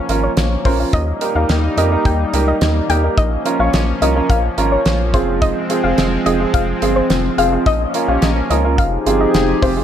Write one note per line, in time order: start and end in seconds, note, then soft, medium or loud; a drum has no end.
0.00 0.89 F3 medium
0.00 5.10 A#3 medium
0.00 0.91 C#4 medium
0.09 0.29 G#1 medium
0.09 0.30 C#4 medium
0.09 0.30 F4 medium
0.09 0.30 A#4 loud
0.09 closed hi-hat medium
0.23 0.32 C#5 medium
0.37 0.57 A#1 loud
0.37 snare loud
0.37 closed hi-hat medium
0.65 0.85 A#1 medium
0.65 0.76 C#4 medium
0.65 0.76 F4 medium
0.65 0.76 A#4 loud
0.65 0.74 C5 medium
0.65 kick loud
0.65 open hi-hat medium
0.80 0.93 C#4 medium
0.80 0.93 F4 medium
0.80 0.93 A#4 medium
0.93 1.13 D#2 loud
0.93 3.15 G3 medium
0.93 3.15 D#4 medium
0.93 1.02 D#5 loud
0.93 kick loud
0.93 closed hi-hat medium
1.21 1.32 D#4 medium
1.21 1.32 G4 medium
1.21 1.32 A#4 loud
1.21 closed hi-hat medium
1.35 1.45 D#2 loud
1.35 1.56 D#4 medium
1.35 1.56 G4 medium
1.35 1.56 A#4 medium
1.35 1.53 F5 medium
1.49 1.69 D#2 loud
1.49 snare loud
1.49 closed hi-hat medium
1.77 1.97 F2 medium
1.77 1.88 D#4 medium
1.77 1.88 G4 medium
1.77 1.88 A#4 loud
1.77 1.86 D#5 medium
1.77 closed hi-hat medium
1.92 2.12 D#4 medium
1.92 2.12 G4 medium
1.92 2.12 A#4 medium
2.05 2.25 D#2 loud
2.05 2.14 G5 medium
2.05 kick loud
2.05 closed hi-hat medium
2.33 2.53 C#2 loud
2.33 2.54 D#4 medium
2.33 2.54 G4 medium
2.33 2.54 A#4 loud
2.33 closed hi-hat medium
2.48 2.56 D#5 medium
2.61 2.81 D#2 loud
2.61 snare loud
2.61 closed hi-hat medium
2.89 3.09 D#2 loud
2.89 3.00 D#4 medium
2.89 3.00 G4 medium
2.89 3.00 A#4 loud
2.89 2.98 G5 medium
2.89 closed hi-hat medium
3.04 3.18 D#4 medium
3.04 3.18 G4 medium
3.04 3.18 A#4 medium
3.17 3.37 A#1 loud
3.17 9.84 F3 medium
3.17 5.12 C#4 medium
3.17 3.26 D#5 loud
3.17 kick loud
3.17 closed hi-hat medium
3.46 3.56 C#4 medium
3.46 3.56 F4 medium
3.46 3.56 A#4 loud
3.46 closed hi-hat medium
3.60 3.69 A#1 loud
3.60 3.80 C#4 medium
3.60 3.80 F4 medium
3.60 3.80 C#5 medium
3.60 3.77 F5 medium
3.73 3.93 A#1 loud
3.73 snare loud
3.73 closed hi-hat medium
4.02 4.21 C2 medium
4.02 4.12 C#4 medium
4.02 4.12 F4 medium
4.02 4.12 A#4 loud
4.02 4.11 D#5 medium
4.02 closed hi-hat medium
4.16 4.36 C#4 medium
4.16 4.36 F4 medium
4.16 4.36 A#4 medium
4.30 4.49 A#1 loud
4.30 4.39 F5 medium
4.30 kick loud
4.30 closed hi-hat medium
4.58 4.77 G#1 medium
4.58 4.78 C#4 medium
4.58 4.78 F4 medium
4.58 4.78 A#4 loud
4.58 closed hi-hat medium
4.72 4.81 C#5 medium
4.86 5.15 A#1 loud
4.86 snare loud
4.86 closed hi-hat medium
5.14 5.53 F1 medium
5.14 7.64 G#3 medium
5.14 5.59 C4 medium
5.14 7.64 C4 loud
5.14 5.59 F4 medium
5.14 5.59 G#4 loud
5.14 5.23 C5 medium
5.14 kick loud
5.14 closed hi-hat medium
5.42 5.51 D#5 loud
5.42 kick loud
5.42 closed hi-hat medium
5.70 5.80 C4 medium
5.70 5.80 F4 medium
5.70 5.80 G#4 medium
5.70 closed hi-hat medium
5.84 5.94 F1 medium
5.84 6.05 C4 medium
5.84 6.05 F4 medium
5.84 6.05 G#4 medium
5.84 6.01 F5 medium
5.98 6.18 F1 loud
5.98 snare loud
5.98 closed hi-hat medium
6.26 6.46 F1 loud
6.26 6.36 C4 medium
6.26 6.36 F4 medium
6.26 6.36 G#4 loud
6.26 6.35 D#5 medium
6.26 closed hi-hat medium
6.40 6.61 C4 medium
6.40 6.61 F4 medium
6.40 6.61 G#4 medium
6.54 6.74 F1 loud
6.54 6.63 F5 medium
6.54 kick loud
6.54 closed hi-hat medium
6.82 7.02 G1 medium
6.82 7.03 C4 medium
6.82 7.03 F4 medium
6.82 7.03 G#4 loud
6.82 closed hi-hat medium
6.96 7.05 C5 medium
7.10 7.30 F1 loud
7.10 snare loud
7.10 closed hi-hat medium
7.38 7.58 F1 loud
7.38 7.48 C4 medium
7.38 7.48 F4 medium
7.38 7.48 G#4 loud
7.38 7.47 F5 medium
7.38 closed hi-hat medium
7.52 7.66 C4 medium
7.52 7.66 F4 medium
7.52 7.66 G#4 medium
7.66 7.86 A#1 loud
7.66 8.77 A#3 medium
7.66 8.77 C#4 medium
7.66 7.75 D#5 loud
7.66 kick loud
7.66 closed hi-hat medium
7.94 8.05 C#4 medium
7.94 8.05 F4 medium
7.94 8.05 A#4 loud
7.94 closed hi-hat medium
8.08 8.18 A#1 loud
8.08 8.29 C#4 medium
8.08 8.29 F4 medium
8.08 8.29 G4 medium
8.08 8.26 F5 medium
8.22 8.42 A#1 loud
8.22 snare loud
8.22 closed hi-hat medium
8.50 8.80 C#2 loud
8.50 8.61 C#4 medium
8.50 8.61 F4 medium
8.50 8.61 A#4 loud
8.50 8.59 D#5 medium
8.50 closed hi-hat medium
8.64 8.78 C#4 medium
8.64 8.78 F4 medium
8.64 8.78 A#4 medium
8.78 8.98 F1 loud
8.78 9.84 C4 medium
8.78 9.84 D#4 medium
8.78 9.84 G4 medium
8.78 9.84 G#4 medium
8.78 8.87 F5 medium
8.78 kick loud
8.78 closed hi-hat medium
9.06 9.26 G1 medium
9.06 9.27 C4 medium
9.06 9.27 F4 medium
9.06 9.27 G#4 loud
9.06 closed hi-hat medium
9.20 9.29 D#5 medium
9.34 9.54 F1 loud
9.34 snare loud
9.34 closed hi-hat medium
9.62 9.82 F1 loud
9.62 9.73 C4 medium
9.62 9.73 F4 medium
9.62 9.73 G4 loud
9.62 9.71 C5 medium
9.62 kick loud
9.62 open hi-hat medium
9.77 9.84 C4 medium
9.77 9.84 F4 medium
9.77 9.84 G#4 medium